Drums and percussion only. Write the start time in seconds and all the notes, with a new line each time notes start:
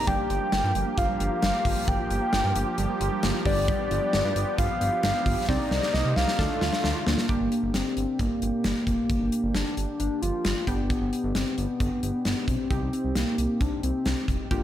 0.07 kick, closed hi-hat
0.30 closed hi-hat
0.52 snare, closed hi-hat
0.75 closed hi-hat
0.98 kick, closed hi-hat
1.20 closed hi-hat
1.42 snare, closed hi-hat
1.65 kick, open hi-hat
1.88 kick, closed hi-hat
2.11 closed hi-hat
2.33 snare, closed hi-hat
2.55 closed hi-hat
2.78 closed hi-hat
3.01 closed hi-hat
3.23 snare, closed hi-hat
3.46 kick, open hi-hat
3.68 kick, closed hi-hat
3.91 closed hi-hat
4.13 snare, closed hi-hat
4.36 closed hi-hat
4.58 kick, closed hi-hat
4.81 closed hi-hat
5.03 snare, closed hi-hat
5.26 kick, open hi-hat
5.49 kick, snare
5.71 snare
5.82 snare
5.94 snare
6.16 snare
6.28 snare
6.39 kick, snare
6.61 snare
6.73 snare
6.84 snare
7.07 snare
7.18 snare
7.29 kick, closed hi-hat
7.52 closed hi-hat
7.74 snare, closed hi-hat
7.97 closed hi-hat
8.19 kick, closed hi-hat
8.42 closed hi-hat
8.64 snare, closed hi-hat
8.87 kick, closed hi-hat
9.10 kick, closed hi-hat
9.32 closed hi-hat
9.55 snare, closed hi-hat
9.77 closed hi-hat
10.00 closed hi-hat
10.23 closed hi-hat
10.45 snare, closed hi-hat
10.67 kick, closed hi-hat
10.90 kick, closed hi-hat
11.13 closed hi-hat
11.35 snare, closed hi-hat
11.58 closed hi-hat
11.80 kick, closed hi-hat
12.03 closed hi-hat
12.25 snare, closed hi-hat
12.48 kick, closed hi-hat
12.71 kick, closed hi-hat
12.93 closed hi-hat
13.15 snare, closed hi-hat
13.38 closed hi-hat
13.61 kick, closed hi-hat
13.83 closed hi-hat
14.06 snare, closed hi-hat
14.28 kick, closed hi-hat
14.51 kick, closed hi-hat